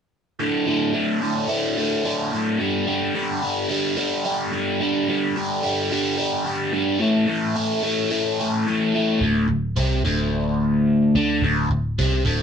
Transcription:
0.39 0.65 D2 medium
0.39 0.66 A2 medium
0.39 0.66 D3 medium
0.66 0.93 D2 medium
0.66 0.93 A2 medium
0.66 0.93 D3 medium
0.94 1.20 D2 medium
0.94 1.21 A2 medium
0.94 1.21 D3 medium
1.21 1.47 D2 medium
1.21 1.48 A2 medium
1.21 1.49 D3 medium
1.49 1.76 D2 medium
1.49 1.77 A2 medium
1.49 1.78 D3 medium
1.77 2.03 D2 medium
1.77 2.03 A2 medium
1.77 2.03 D3 medium
2.04 2.30 D2 medium
2.04 2.30 A2 medium
2.04 2.31 D3 medium
2.31 2.58 D2 medium
2.31 2.58 A2 medium
2.31 2.58 D3 medium
2.59 2.86 G2 medium
2.59 2.86 D3 medium
2.59 2.87 G3 medium
2.86 3.14 G2 medium
2.86 3.14 D3 medium
2.86 3.15 G3 medium
3.14 3.41 G2 medium
3.14 3.41 D3 medium
3.14 3.42 G3 medium
3.42 3.68 G2 medium
3.42 3.68 D3 medium
3.42 3.69 G3 medium
3.69 3.96 G2 medium
3.69 3.96 D3 medium
3.69 3.98 G3 medium
3.97 4.23 G2 medium
3.97 4.24 D3 medium
3.97 4.25 G3 medium
4.25 4.51 G2 medium
4.25 4.51 D3 medium
4.25 4.53 G3 medium
4.52 4.79 G2 medium
4.52 4.80 D3 medium
4.52 4.81 G3 medium
4.80 5.07 G2 medium
4.80 5.08 D3 medium
4.80 5.09 G3 medium
5.08 5.34 G2 medium
5.08 5.35 D3 medium
5.08 5.36 G3 medium
5.35 5.62 G2 medium
5.35 5.62 D3 medium
5.35 5.63 G3 medium
5.63 5.90 G2 medium
5.63 5.91 D3 medium
5.63 5.91 G3 medium
5.91 6.16 G2 medium
5.91 6.17 D3 medium
5.91 6.17 G3 medium
6.17 6.44 G2 medium
6.17 6.45 D3 medium
6.17 6.45 G3 medium
6.45 6.72 G2 medium
6.45 6.72 D3 medium
6.45 6.73 G3 medium
6.73 6.99 G2 medium
6.73 7.00 D3 medium
6.73 7.00 G3 medium
7.00 7.26 A2 medium
7.00 7.27 E3 medium
7.00 7.28 A3 medium
7.28 7.54 A2 medium
7.28 7.55 E3 medium
7.28 7.55 A3 medium
7.55 7.82 A2 medium
7.55 7.82 E3 medium
7.55 7.83 A3 loud
7.83 8.09 A2 medium
7.83 8.10 E3 medium
7.83 8.11 A3 medium
8.10 8.38 A2 medium
8.10 8.39 E3 medium
8.10 8.39 A3 medium
8.40 8.65 A2 medium
8.40 8.66 E3 medium
8.40 8.66 A3 medium
8.66 8.93 A2 medium
8.66 8.94 E3 medium
8.66 8.94 A3 medium
8.94 9.20 A2 medium
8.94 9.21 E3 medium
8.94 9.21 A3 medium
9.21 9.47 D1 medium
9.21 9.47 D2 medium
9.49 9.75 D1 medium
9.49 9.71 D2 medium
9.77 10.03 C2 medium
9.77 10.04 C3 medium
10.04 11.11 D1 medium
10.04 11.14 D2 medium
11.15 11.41 D2 medium
11.15 11.42 D3 loud
11.42 11.68 D1 medium
11.42 11.70 D2 medium
11.70 11.96 D1 medium
11.70 11.93 D2 medium
11.99 12.24 C2 medium
11.99 12.25 C3 loud
12.26 12.43 D1 medium
12.26 12.43 D2 medium

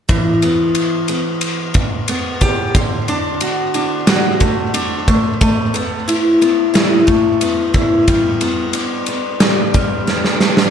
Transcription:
0.09 1.75 E3 medium
0.09 kick medium
0.09 ride medium
0.42 1.08 B3 medium
0.42 ride medium
0.75 ride medium
1.08 2.08 B3 soft
1.08 ride medium
1.41 ride medium
1.74 kick medium
1.74 ride medium
2.08 2.75 B3 medium
2.08 ride medium
2.41 2.75 G4 medium
2.41 kick medium
2.41 ride medium
2.75 4.42 D3 medium
2.75 kick medium
2.75 ride medium
3.08 3.74 D4 medium
3.08 ride soft
3.41 4.06 F#4 medium
3.41 ride medium
3.74 4.73 D4 medium
3.74 ride medium
4.07 5.08 F#4 medium
4.07 snare loud
4.07 ride medium
4.40 5.07 A3 medium
4.40 kick medium
4.40 ride medium
4.74 5.08 D4 medium
4.74 ride medium
5.08 5.40 A3 medium
5.08 kick medium
5.08 ride soft
5.41 7.06 A3 medium
5.41 kick loud
5.41 ride medium
5.74 6.41 B3 medium
5.74 ride medium
6.08 6.72 E4 medium
6.08 ride medium
6.42 7.42 B3 soft
6.42 ride soft
6.74 7.73 E4 medium
6.74 snare medium
6.74 ride medium
7.07 8.07 A3 medium
7.07 kick medium
7.07 ride soft
7.41 8.41 B3 medium
7.41 ride medium
7.74 8.07 E4 medium
7.74 kick medium
7.74 ride soft
8.08 9.74 G3 medium
8.08 kick medium
8.08 ride medium
8.41 9.07 B3 medium
8.41 ride medium
8.73 9.40 D4 medium
8.73 ride medium
9.06 10.06 B3 soft
9.06 ride medium
9.40 10.40 D4 medium
9.40 snare loud
9.40 ride medium
9.74 10.70 G3 medium
9.74 kick medium
9.74 ride soft
10.07 10.70 B3 medium
10.07 snare soft
10.24 snare medium
10.40 10.70 D4 medium
10.40 snare medium
10.57 snare medium

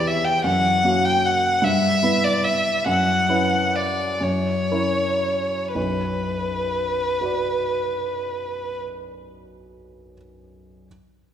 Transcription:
0.00 0.46 E2 soft
0.00 0.40 B3 soft
0.00 0.40 E4 soft
0.00 0.41 G4 soft
0.07 0.26 E5 medium
0.24 0.44 G5 medium
0.44 0.82 F#2 soft
0.44 1.06 F#5 medium
0.84 1.59 A#3 soft
0.84 1.59 C#4 soft
0.84 1.59 F#4 soft
1.05 1.27 G5 medium
1.26 1.65 F#5 medium
1.62 2.01 G2 soft
1.62 2.25 E5 medium
2.03 2.82 B3 soft
2.03 2.82 E4 soft
2.03 2.82 B4 soft
2.24 2.45 D5 medium
2.44 2.86 E5 medium
2.86 3.28 F#2 soft
2.86 3.77 F#5 medium
3.29 4.17 C#4 soft
3.29 4.17 E4 soft
3.29 4.17 B4 soft
3.76 4.24 D5 medium
4.21 4.69 F#2 soft
4.21 5.73 C#5 medium
4.71 5.72 C#4 soft
4.71 5.72 E4 soft
4.71 5.72 A#4 soft
5.74 8.82 B1 soft
5.74 8.82 F#2 soft
5.74 8.81 B4 soft
7.21 10.13 F#4 soft
7.21 10.14 B4 soft
7.25 10.15 D5 soft

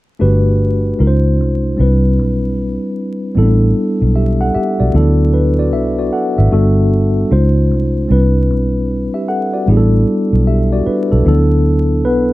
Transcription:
0.19 0.92 G1 medium
0.19 0.99 A3 medium
0.19 0.99 D4 medium
0.19 0.99 F#4 medium
0.19 1.00 G4 medium
0.19 1.00 B4 medium
0.99 1.40 C#2 medium
0.99 1.78 G#3 medium
0.99 1.78 C#4 medium
0.99 1.78 D#4 medium
0.99 1.79 F4 soft
0.99 1.08 A#4 medium
1.07 1.82 C5 medium
1.40 1.75 C2 medium
1.77 2.19 C2 medium
1.77 3.32 G3 medium
1.77 3.33 C4 medium
1.77 3.33 D4 soft
1.77 3.34 E4 medium
1.77 3.34 B4 medium
2.19 2.76 B1 medium
3.35 3.72 A1 medium
3.35 4.90 G3 medium
3.35 4.91 B3 medium
3.35 3.45 C4 soft
3.35 4.91 E4 medium
3.35 4.15 A4 medium
3.43 4.93 D4 medium
4.02 4.50 B1 medium
4.16 4.40 G4 soft
4.16 4.39 E5 medium
4.41 4.54 A4 soft
4.41 4.54 F#5 medium
4.54 4.79 G4 medium
4.54 4.79 E5 medium
4.54 muted fingered electric bass stroke soft
4.80 4.93 B1 medium
4.80 5.18 F#4 soft
4.80 5.17 D5 medium
4.92 5.74 D2 medium
4.92 5.01 F3 soft
4.92 6.48 B3 medium
4.92 5.33 D4 medium
4.92 5.33 E4 medium
4.96 6.51 F#3 medium
4.96 5.34 A4 medium
5.34 5.58 D4 soft
5.34 5.58 B4 medium
5.59 5.73 F#4 soft
5.59 5.72 D5 medium
5.73 6.09 B1 medium
5.73 5.97 E5 medium
5.99 6.12 F#4 soft
5.99 6.12 D5 soft
6.13 6.37 A4 soft
6.13 6.37 F#5 medium
6.38 6.51 G#1 medium
6.38 6.75 E5 medium
6.51 7.23 G1 medium
6.51 7.30 G3 medium
6.51 7.31 B3 medium
6.51 7.31 D4 medium
6.51 7.31 F#4 medium
6.51 7.32 A4 medium
7.31 7.71 C#2 medium
7.31 8.10 G#3 medium
7.31 8.10 C#4 medium
7.31 8.10 D#4 medium
7.31 8.10 F4 medium
7.31 8.11 C5 medium
7.71 8.06 C2 medium
8.08 8.50 C2 medium
8.08 9.64 G3 medium
8.08 9.64 C4 medium
8.08 9.65 D4 medium
8.08 9.65 E4 soft
8.08 8.88 B4 medium
8.50 9.08 B1 medium
9.14 9.28 G4 soft
9.14 9.28 E5 soft
9.28 9.53 A4 soft
9.28 9.52 F#5 medium
9.54 9.91 F#4 soft
9.54 9.91 D5 soft
9.67 10.03 A1 medium
9.67 11.22 G3 medium
9.67 11.22 B3 medium
9.67 10.46 D4 medium
9.67 10.46 E4 medium
9.67 9.77 G#4 medium
9.77 10.50 A4 medium
10.33 10.81 B1 medium
10.47 10.71 G4 soft
10.47 10.71 E5 medium
10.73 10.86 F#4 medium
10.73 10.86 D5 medium
10.86 11.11 D4 medium
10.86 11.10 B4 medium
10.86 muted fingered electric bass stroke soft
11.12 11.25 B1 medium
11.12 11.27 A4 medium
11.24 12.05 D2 medium
11.24 11.33 F3 soft
11.24 12.05 B3 medium
11.24 12.33 D4 medium
11.24 12.33 E4 medium
11.24 12.33 A4 medium
11.31 12.33 F#3 medium
12.05 12.33 B1 medium
12.05 12.33 B3 medium
12.05 12.33 B4 medium

